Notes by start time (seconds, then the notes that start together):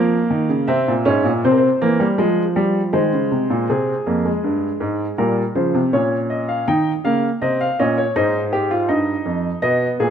Already playing: F3 A#3 F5
0.30 D#3
0.49 C#3
0.68 C3 C4 E5
0.88 A#2
1.05 G#2 C#4
1.24 A#2
1.44 C3 C4 C5
1.52 A#4
1.58 C5
1.82 E3 A#3
2.00 G3
2.18 F3 G#3
2.56 G3
2.93 D#3 G#3 C5
3.13 C#3
3.31 C3
3.50 A#2
3.69 C3 C4 G#4
4.06 F2 A#3
4.25 G#3
4.44 G2
4.80 G#2
5.18 A#2 G3 A#4
5.55 C#3 F3 C5
5.74 C3
5.93 A#2 C#4 C#5
6.30 D#5
6.48 F5
6.68 D#3 D#4 G5
7.05 C#3 A#3 F5
7.42 C3 C4 D#5
7.61 F5
7.79 A#2 C#4 D#5
7.98 C#5
8.16 G#2 D#4 C5
8.53 G4
8.71 F4
8.89 G2 D#4 D#5
9.25 F2
9.62 B2 B3 D#5
10.00 A#2 G#4